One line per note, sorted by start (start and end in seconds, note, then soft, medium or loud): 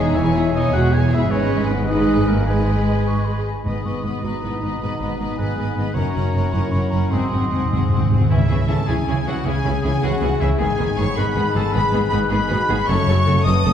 0.00 1.23 E3 medium
0.00 0.17 G#3 medium
0.00 1.16 G#3 medium
0.00 1.28 C#4 medium
0.00 0.17 D#4 medium
0.00 1.30 E4 medium
0.00 0.16 G#4 medium
0.00 0.14 C#5 medium
0.00 0.17 E5 medium
0.00 0.14 G#5 medium
0.15 0.66 E1 medium
0.15 0.66 E2 medium
0.15 0.36 E3 medium
0.15 0.54 E4 medium
0.15 0.34 C#5 medium
0.15 1.02 C#5 medium
0.15 0.57 E5 medium
0.15 1.01 G#5 medium
0.15 0.36 G#5 medium
0.35 0.54 G#3 medium
0.35 0.54 G#4 medium
0.35 0.55 E5 medium
0.54 0.72 E3 medium
0.54 0.73 D#4 loud
0.54 0.72 C#5 medium
0.54 0.72 D#5 medium
0.54 0.72 G#5 medium
0.73 1.24 E1 medium
0.73 1.24 E2 medium
0.73 0.94 G#3 medium
0.73 0.92 F#4 loud
0.73 0.92 G#4 medium
0.73 0.92 E5 medium
0.73 0.95 F#5 medium
0.92 1.12 E3 medium
0.92 1.11 G#4 medium
0.92 1.12 C#5 medium
0.92 1.12 G#5 medium
1.12 3.58 G#2 medium
1.12 1.28 G#3 medium
1.12 1.22 E4 medium
1.12 1.31 G#4 medium
1.12 1.31 E5 medium
1.12 1.32 E5 medium
1.17 4.43 G#3 medium
1.21 3.84 B3 medium
1.26 1.84 G#3 medium
1.26 4.62 D#4 soft
1.26 1.84 B4 medium
1.30 3.43 G#1 medium
1.30 3.42 G#2 medium
1.30 1.69 C#4 medium
1.30 1.84 B4 medium
1.30 1.68 C#5 medium
1.30 1.84 D#5 medium
1.30 1.84 G#5 medium
1.69 1.89 B3 medium
1.69 1.87 B4 medium
1.86 2.46 G#3 medium
1.86 2.28 D#4 medium
1.86 2.44 B4 medium
1.86 2.47 B4 medium
1.86 2.29 D#5 medium
1.86 2.45 G#5 medium
1.91 2.47 D#5 medium
2.27 2.47 A#3 medium
2.27 2.46 A#4 medium
2.46 3.44 G#3 medium
2.46 3.47 G#3 medium
2.46 3.44 G#4 medium
2.46 3.44 B4 medium
2.46 3.45 B4 medium
2.46 3.46 D#5 medium
2.46 3.01 G#5 medium
3.06 3.27 C#6 medium
3.25 3.45 B5 medium
3.46 3.65 G#5 soft
3.65 3.74 G#1 soft
3.65 3.73 G#2 soft
3.65 4.20 G#2 soft
3.65 4.82 G#2 soft
3.65 5.91 B2 soft
3.65 3.86 B3 soft
3.65 5.91 D#4 soft
3.65 4.20 G#4 soft
3.65 3.85 B4 soft
3.65 4.20 D#5 soft
3.65 3.83 D#5 soft
3.65 3.87 B5 soft
3.85 3.93 G#1 soft
3.85 3.93 G#2 soft
3.85 4.24 B3 soft
3.85 4.05 B3 soft
3.85 4.03 B4 soft
3.85 4.02 D#5 soft
3.85 4.05 C#6 soft
4.03 4.12 G#1 soft
4.03 4.11 G#2 soft
4.03 4.38 A#3 soft
4.03 4.24 B3 soft
4.03 4.22 B4 soft
4.03 4.21 D#5 soft
4.03 4.24 B5 soft
4.22 4.31 G#1 soft
4.22 4.31 G#2 soft
4.22 5.00 B3 soft
4.22 4.42 B3 soft
4.22 4.42 F#4 soft
4.22 4.41 B4 soft
4.22 4.40 D#5 soft
4.22 5.36 D#5 soft
4.22 5.38 A#5 soft
4.41 4.51 G#1 soft
4.41 4.51 G#2 soft
4.41 5.57 G#3 soft
4.41 4.62 B3 soft
4.41 4.64 E4 soft
4.41 4.62 B4 soft
4.41 4.61 D#5 soft
4.62 4.70 G#1 soft
4.62 4.70 G#2 soft
4.62 4.82 B3 soft
4.62 5.40 D#4 soft
4.62 5.77 D#4 soft
4.62 4.80 B4 soft
4.62 4.79 D#5 soft
4.80 4.90 G#1 soft
4.80 4.90 G#2 soft
4.80 5.97 G#2 soft
4.80 5.00 B3 soft
4.80 4.98 B4 soft
4.80 5.00 D#5 soft
4.99 5.09 G#1 soft
4.99 5.09 G#2 soft
4.99 5.39 B3 soft
4.99 5.19 B3 soft
4.99 5.18 B4 soft
4.99 5.19 D#5 soft
5.20 5.28 G#1 soft
5.20 5.27 G#2 soft
5.20 5.52 A#3 soft
5.20 5.38 B3 soft
5.20 5.38 B4 soft
5.20 5.38 D#5 soft
5.37 5.47 G#1 soft
5.37 5.46 G#2 soft
5.37 5.57 B3 soft
5.37 5.97 B3 soft
5.37 5.94 G#4 soft
5.37 5.96 B4 soft
5.37 5.58 B4 soft
5.37 5.94 G#5 soft
5.41 5.56 D#5 soft
5.57 5.66 G#1 soft
5.57 5.65 G#2 soft
5.57 5.97 G#3 soft
5.57 5.76 B3 soft
5.57 5.77 B4 soft
5.57 5.75 D#5 soft
5.76 5.85 G#1 soft
5.76 5.84 G#2 soft
5.76 5.95 B3 soft
5.76 5.97 D#4 soft
5.76 5.95 B4 soft
5.76 5.95 D#5 soft
5.94 6.04 F#1 medium
5.94 6.03 F#2 medium
5.94 7.14 F#2 soft
5.94 7.09 C#4 soft
5.94 6.14 C#4 soft
5.94 6.55 F#4 soft
5.94 6.13 A#4 soft
5.94 7.12 A#4 medium
5.94 7.11 C#5 medium
5.94 6.12 F#5 soft
5.94 6.54 A#5 soft
6.14 6.23 F#1 soft
6.14 6.22 F#2 medium
6.14 6.52 C#4 soft
6.14 6.33 C#4 soft
6.14 6.33 A#4 medium
6.14 6.31 F#5 soft
6.32 6.42 F#1 medium
6.32 6.41 F#2 medium
6.32 6.66 B3 soft
6.32 6.53 C#4 soft
6.32 6.52 A#4 soft
6.32 6.49 F#5 soft
6.50 6.62 F#1 medium
6.50 6.61 F#2 medium
6.50 6.71 C#4 soft
6.50 7.14 E4 medium
6.50 6.71 A#4 medium
6.50 6.70 F#5 soft
6.50 6.73 C#6 medium
6.71 6.81 F#1 soft
6.71 6.80 F#2 medium
6.71 7.13 A#3 soft
6.71 6.90 C#4 soft
6.71 6.89 A#4 soft
6.71 6.90 F#5 soft
6.71 6.92 B5 medium
6.90 7.01 F#1 soft
6.90 7.00 F#2 soft
6.90 7.11 C#4 soft
6.90 8.08 F#4 soft
6.90 7.10 A#4 soft
6.90 7.09 F#5 soft
6.90 7.12 A#5 soft
7.10 7.21 G#1 soft
7.10 8.31 G#2 soft
7.10 7.20 G#2 medium
7.10 7.19 G#2 soft
7.10 8.11 F#3 soft
7.10 8.11 C4 soft
7.10 7.32 C4 soft
7.10 8.11 D#4 soft
7.10 7.28 G#4 soft
7.10 8.09 D#5 soft
7.10 7.30 F#5 soft
7.10 8.10 C6 soft
7.20 7.26 G#2 soft
7.27 7.34 G#2 soft
7.27 7.49 G#4 soft
7.31 7.40 G#1 soft
7.31 7.40 G#2 soft
7.31 7.41 G#2 soft
7.31 7.69 C4 soft
7.31 7.50 C4 soft
7.31 7.48 F#5 soft
7.42 7.49 G#2 soft
7.49 7.60 G#1 soft
7.49 7.56 G#2 soft
7.49 7.59 G#2 soft
7.49 7.85 A3 soft
7.49 7.70 C4 soft
7.49 7.69 G#4 soft
7.49 7.70 F#5 soft
7.57 7.64 G#2 soft
7.65 7.72 G#2 soft
7.70 7.80 G#1 soft
7.70 7.79 G#2 soft
7.70 7.80 G#2 soft
7.70 8.31 C4 soft
7.70 7.90 C4 soft
7.70 7.90 G#4 soft
7.70 7.90 F#5 soft
7.82 7.88 G#2 soft
7.89 8.00 G#1 soft
7.89 7.96 G#2 soft
7.89 7.99 G#2 soft
7.89 8.40 G#3 soft
7.89 8.10 C4 soft
7.89 8.09 G#4 soft
7.89 8.11 F#5 soft
7.97 8.04 G#2 medium
8.05 8.11 G#2 medium
8.09 8.20 G#1 soft
8.09 8.19 G#2 soft
8.09 8.19 G#2 medium
8.09 8.30 C4 soft
8.09 8.31 F#4 soft
8.09 8.28 G#4 soft
8.09 8.31 F#5 soft
8.20 8.27 G#2 medium
8.29 8.39 C#2 medium
8.29 9.45 C#3 medium
8.29 8.38 C#3 medium
8.29 8.39 E3 medium
8.29 8.39 C#4 medium
8.29 8.66 E4 medium
8.29 8.38 E4 soft
8.29 8.37 G#4 medium
8.29 8.71 E5 medium
8.29 8.66 E5 medium
8.41 9.27 G#3 soft
8.48 8.58 C#2 soft
8.48 8.58 C#3 soft
8.48 8.58 E3 soft
8.48 8.58 C#4 soft
8.48 8.56 E4 soft
8.48 8.56 G#4 soft
8.48 9.06 G#4 soft
8.60 9.17 C#4 soft
8.67 8.76 C#2 soft
8.67 8.76 C#3 medium
8.67 8.77 E3 soft
8.67 8.77 C#4 soft
8.67 8.75 E4 soft
8.67 8.75 G#4 soft
8.67 8.88 A4 medium
8.67 8.88 C#5 soft
8.67 8.88 A5 medium
8.67 8.86 A5 medium
8.79 8.97 G#5 soft
8.87 8.96 C#2 medium
8.87 8.96 C#3 medium
8.87 8.97 E3 soft
8.87 8.96 C#4 soft
8.87 8.95 E4 medium
8.87 9.42 E4 medium
8.87 9.26 G#4 medium
8.87 8.95 G#4 soft
8.87 9.82 C#5 soft
8.87 9.25 G#5 medium
8.87 9.27 G#5 medium
8.98 9.91 G#5 soft
9.08 9.16 C#2 medium
9.08 9.15 C#3 medium
9.08 9.16 E3 soft
9.08 9.16 C#4 soft
9.08 9.16 E4 soft
9.08 9.63 G#4 soft
9.08 9.16 G#4 soft
9.18 9.36 C#4 soft
9.26 9.34 C#2 medium
9.26 9.34 C#3 soft
9.26 9.34 E3 soft
9.26 9.54 G#3 soft
9.26 9.34 C#4 soft
9.26 9.34 E4 soft
9.26 9.46 F#4 medium
9.26 9.34 G#4 soft
9.26 9.46 F#5 medium
9.26 9.48 F#5 medium
9.37 9.72 C#4 soft
9.44 9.52 C#2 medium
9.44 9.53 C#3 medium
9.44 10.62 C#3 medium
9.44 9.53 E3 soft
9.44 9.53 C#4 medium
9.44 9.54 E4 medium
9.44 9.81 G#4 medium
9.44 9.54 G#4 soft
9.44 11.14 G#4 medium
9.44 9.83 G#5 medium
9.55 10.40 G#3 soft
9.64 9.72 C#2 medium
9.64 9.72 C#3 medium
9.64 9.73 E3 soft
9.64 9.73 C#4 soft
9.64 9.73 E4 soft
9.64 10.20 G#4 soft
9.64 9.73 G#4 soft
9.73 10.30 C#4 soft
9.82 9.91 C#2 soft
9.82 9.91 C#3 medium
9.82 9.92 E3 soft
9.82 9.91 C#4 soft
9.82 9.91 E4 soft
9.82 9.91 G#4 medium
9.82 9.91 G#4 soft
9.82 10.02 C#5 soft
9.82 10.00 G#5 medium
9.82 10.03 G#5 medium
10.00 10.10 C#2 medium
10.00 10.10 C#3 medium
10.00 10.12 E3 soft
10.00 10.12 C#4 soft
10.00 10.10 E4 medium
10.00 10.42 F#4 medium
10.00 10.11 G#4 medium
10.00 10.62 C#5 soft
10.00 10.38 F#5 medium
10.00 10.41 F#5 medium
10.12 11.16 G#5 soft
10.20 10.28 C#2 medium
10.20 10.29 C#3 medium
10.20 10.29 E3 soft
10.20 10.29 C#4 soft
10.20 10.29 E4 soft
10.20 10.29 G#4 soft
10.20 10.88 G#4 soft
10.31 10.50 C#4 soft
10.39 10.48 C#2 medium
10.39 10.49 C#3 soft
10.39 10.49 E3 soft
10.39 12.90 G#3 soft
10.39 10.49 C#4 soft
10.39 10.48 E4 medium
10.39 10.60 E4 medium
10.39 10.48 G#4 medium
10.39 10.58 E5 medium
10.39 10.48 E5 medium
10.51 10.62 C#4 soft
10.58 10.67 G#1 medium
10.58 11.73 G#2 medium
10.58 10.68 G#2 medium
10.58 10.68 D#3 medium
10.58 10.66 B3 medium
10.58 10.68 B3 medium
10.58 10.66 G#4 medium
10.58 10.98 G#4 medium
10.58 10.96 G#5 medium
10.58 10.97 G#5 medium
10.69 11.55 D#3 soft
10.77 10.86 G#1 soft
10.77 10.87 G#2 medium
10.77 10.87 D#3 medium
10.77 10.85 B3 medium
10.77 10.86 B3 medium
10.77 11.46 D#4 soft
10.77 10.85 G#4 medium
10.89 11.36 G#4 soft
10.96 11.05 G#1 medium
10.96 11.06 G#2 medium
10.96 11.06 D#3 soft
10.96 11.04 B3 soft
10.96 11.06 B3 soft
10.96 11.04 G#4 soft
10.96 12.11 B4 medium
10.96 11.17 C#5 medium
10.96 11.16 C#6 medium
10.96 11.17 C#6 medium
11.08 11.26 D#5 medium
11.15 11.24 G#1 medium
11.15 11.25 G#2 medium
11.15 11.25 D#3 medium
11.15 11.23 B3 medium
11.15 11.25 B3 medium
11.15 11.23 G#4 medium
11.15 12.29 G#4 medium
11.15 11.55 B4 medium
11.15 12.30 G#5 medium
11.15 11.57 B5 medium
11.15 11.56 B5 medium
11.28 12.21 D#5 medium
11.36 11.44 G#1 medium
11.36 11.44 G#2 medium
11.36 11.44 D#3 medium
11.36 11.44 B3 medium
11.36 11.44 G#4 medium
11.36 12.03 G#4 medium
11.47 11.93 D#4 medium
11.54 11.63 G#1 medium
11.54 11.63 G#2 medium
11.54 11.63 D#3 medium
11.54 11.83 D#3 soft
11.54 11.63 B3 medium
11.54 11.63 B3 soft
11.54 11.63 G#4 medium
11.54 11.74 A4 medium
11.54 11.74 A5 medium
11.65 12.79 B3 soft
11.72 11.82 G#1 medium
11.72 12.90 G#2 medium
11.72 11.82 G#2 medium
11.72 11.83 D#3 medium
11.72 11.80 B3 medium
11.72 11.82 B3 medium
11.72 11.80 G#4 medium
11.72 12.12 B4 medium
11.72 12.08 B5 medium
11.72 12.12 B5 medium
11.84 12.68 D#3 soft
11.92 12.02 G#1 medium
11.92 12.01 G#2 medium
11.92 12.00 D#3 medium
11.92 12.00 B3 medium
11.92 12.58 D#4 medium
11.92 12.00 G#4 medium
12.04 12.49 G#4 soft
12.09 12.20 G#1 medium
12.09 12.20 G#2 medium
12.09 12.20 D#3 soft
12.09 12.19 B3 medium
12.09 12.20 B3 soft
12.09 12.19 G#4 medium
12.09 12.90 B4 medium
12.09 12.31 B4 medium
12.09 12.17 B5 medium
12.09 12.30 B5 medium
12.22 12.38 D#5 medium
12.29 12.39 G#1 medium
12.29 12.39 G#2 medium
12.29 12.38 D#3 medium
12.29 12.37 B3 medium
12.29 12.39 B3 medium
12.29 12.37 G#4 medium
12.29 12.87 B4 medium
12.29 12.50 B4 medium
12.29 12.90 G#5 medium
12.29 12.86 B5 medium
12.40 12.89 D#5 medium
12.49 12.58 G#1 medium
12.49 12.58 G#2 medium
12.49 12.58 D#3 medium
12.49 12.57 B3 medium
12.49 12.58 B3 medium
12.49 12.69 F#4 medium
12.49 12.57 G#4 medium
12.49 12.90 G#4 medium
12.59 12.89 D#4 medium
12.69 12.77 G#1 medium
12.69 12.77 G#2 medium
12.69 12.77 D#3 medium
12.69 12.90 D#3 soft
12.69 12.77 B3 medium
12.69 12.77 G#4 medium
12.69 12.89 G#4 medium
12.80 12.90 B3 soft
12.86 12.97 F#1 medium
12.86 13.73 F#2 medium
12.86 12.96 F#2 medium
12.86 12.97 F#3 medium
12.86 12.97 A3 medium
12.86 12.96 C#4 medium
12.86 12.95 A4 medium
12.86 13.08 A4 medium
12.86 13.46 C#5 medium
12.86 13.45 C#6 loud
12.86 13.44 C#6 medium
12.98 13.73 C#3 soft
13.07 13.15 F#1 medium
13.07 13.15 F#2 medium
13.07 13.16 F#3 medium
13.07 13.16 A3 medium
13.07 13.15 C#4 medium
13.07 13.73 F#4 medium
13.07 13.27 G#4 medium
13.07 13.16 A4 medium
13.18 13.63 A4 medium
13.26 13.35 F#1 medium
13.26 13.35 F#2 medium
13.26 13.34 F#3 medium
13.26 13.35 A3 medium
13.26 13.34 C#4 medium
13.26 13.34 A4 medium
13.26 13.46 A4 medium
13.26 13.73 C#5 medium
13.36 13.54 F#5 medium
13.44 13.55 F#1 medium
13.44 13.53 F#2 medium
13.44 13.54 F#3 medium
13.44 13.54 A3 medium
13.44 13.54 C#4 medium
13.44 13.54 A4 medium
13.44 13.65 B4 medium
13.44 13.73 D#5 medium
13.44 13.73 A5 medium
13.44 13.73 D#6 medium
13.44 13.73 D#6 loud
13.55 13.73 F#5 medium
13.64 13.73 F#1 medium
13.64 13.73 F#2 medium
13.64 13.73 F#3 medium
13.64 13.73 A3 medium
13.64 13.72 C#4 medium
13.64 13.72 A4 medium
13.64 13.73 A4 medium